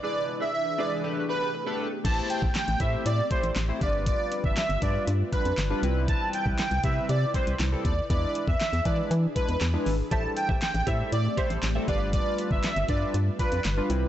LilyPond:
<<
  \new Staff \with { instrumentName = "Supersaw synth" } { \time 4/4 \key a \minor \tempo 4 = 119 d''8 r16 e''16 e''8 d''16 r8. b'8 r4 | a''8 g''8 g''8 e''16 r16 d''8 c''16 r8. d''16 r16 | d''8 r16 e''16 e''8 d''16 r8. b'8 r4 | a''8 g''8 g''8 e''16 r16 d''8 c''16 r8. d''16 r16 |
d''8 r16 e''16 e''8 d''16 r8. b'8 r4 | a''8 g''8 g''8 e''16 r16 d''8 c''16 r8. d''16 r16 | d''8 r16 e''16 e''8 d''16 r8. b'8 r4 | }
  \new Staff \with { instrumentName = "Clean electric guitar" } { \time 4/4 \key a \minor <d' gis' b'>8 r16 <d' gis' b'>16 r8 <d' gis' b'>16 <d' gis' b'>16 r4 r16 <d' a' b'>16 <d' a' b'>16 r16 | r1 | r1 | r1 |
r1 | <g' c'' e''>8 r16 <g' c'' e''>16 r8 <g' c'' e''>16 <g' c'' e''>16 r8 <g' c'' e''>8 r16 <g' c'' e''>16 <g' b' f''>8 | r1 | }
  \new Staff \with { instrumentName = "Analog polysynth" } { \time 4/4 \key a \minor <gis d' e' b'>8. r8. <gis d' e' b'>8 <a d' g' b'>8 <a d' g' b'>8 r16 <a d' g' b'>8 r16 | <a e' g' c''>8. r8. <a e' g' c''>8 r8 <a e' g' c''>8 r16 <a e' g' c''>16 <g d' f' b'>8~ | <g d' f' b'>4 r8 <g d' f' b'>8 r8 <g d' f' b'>8 r16 <g d' f' b'>16 <g c' e' b'>8~ | <g c' e' b'>4 r8 <g c' e' b'>8 r8 <g c' e' b'>8 r16 <g c' e' a'>8 r16 |
<gis d' e' b'>8. r8. <gis d' e' b'>8 r8 <gis d' e' b'>8 r16 <gis d' e' b'>8 r16 | <g c' e' a'>8. r8. <g c' e' a'>8 r8 <g c' e' a'>8 r16 <g c' e' a'>16 <g d' f' b'>8~ | <g d' f' b'>4 r8 <g d' f' b'>8 r8 <g d' f' d''>8 r16 <g d' f' b'>16 <g c' e' b'>8 | }
  \new Staff \with { instrumentName = "Ambient pad" } { \time 4/4 \key a \minor <e d' gis'>2 <a b g'>2 | <a c' g'>2.~ <a c' g'>8 <g f' b'>8~ | <g f' b'>2.~ <g f' b'>8 <c e' b'>8~ | <c e' b'>1 |
<e d' gis'>1 | <a c' g'>2.~ <a c' g'>8 <g f' b'>8~ | <g f' b'>2.~ <g f' b'>8 <c e' b'>8 | }
  \new Staff \with { instrumentName = "FM bass" } { \clef bass \time 4/4 \key a \minor r1 | a,,8 r16 a,,16 r16 a,,16 a,8 a,8 r16 a,,16 a,,8 g,,8~ | g,,8 r16 g,,16 r16 g,,16 g,8 g,8 r16 f,16 g,,8 c,8~ | c,8 r16 c,16 r16 c,16 c8 c8 r16 c,16 c,8 dis,8 |
e,8 r16 e,16 r16 e,16 e8 e8 r16 e,16 e,8 gis,,8 | a,,8 r16 a,,16 r16 a,,16 a,8 a,8 r16 a,,16 a,,8 g,,8~ | g,,8 r16 g,,16 r16 g,,16 g,8 g,8 r16 f,16 g,,8 c,8 | }
  \new DrumStaff \with { instrumentName = "Drums" } \drummode { \time 4/4 r4 r4 r4 r4 | <cymc hh bd>8 hh16 bd16 <hc hh sn>16 hh16 <hh bd>8 hh8 <hh bd>16 hh16 <hc hh sn>8 <hh bd>8 | <hh bd>8 hh16 bd16 <hc hh sn>16 hh16 <hh bd>8 hh8 <hh bd>16 hh16 <hc hh sn>8 hh8 | <hh bd>8 hh16 bd16 <hc hh sn>16 hh16 <hh bd>8 hh8 <hh bd>16 hh16 <hc hh sn>8 <hh bd>8 |
<hh bd>8 hh16 bd16 <hc hh sn>16 hh16 <hh bd>8 hh8 <hh bd>16 hh16 <hc hh sn>8 hho8 | <hh bd>8 hh16 bd16 <hc hh sn>16 hh16 <hh bd>8 hh8 <hh bd>16 hh16 <hc hh sn>8 <hh bd>8 | <hh bd>8 hh16 bd16 <hc hh sn>16 hh16 <hh bd>8 hh8 <hh bd>16 hh16 <hc hh sn>8 hh8 | }
>>